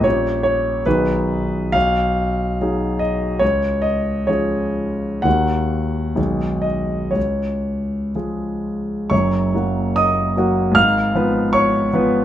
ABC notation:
X:1
M:2/4
L:1/8
Q:1/4=70
K:G#m
V:1 name="Grand piano"
_d d B2 | [K:F#] e3 d | c d c2 | f3 d |
c2 z2 | [cc']2 [dd']2 | [=f=f']2 [cc']2 |]
V:2 name="Grand piano" clef=bass
[_B,,,=G,_D=G]2 [=B,,,^D,^D^G]2 | [K:F#] B,,,2 [F,DG]2 | C,,2 [E,CG]2 | [D,,D,A,F]2 [B,,,D,G,G]2 |
C,,2 [E,G,G]2 | [F,,,F,,] [F,A,F]2 [F,A,F] | [_A,,,_A,,] [=F,_C_c]2 [F,Cc] |]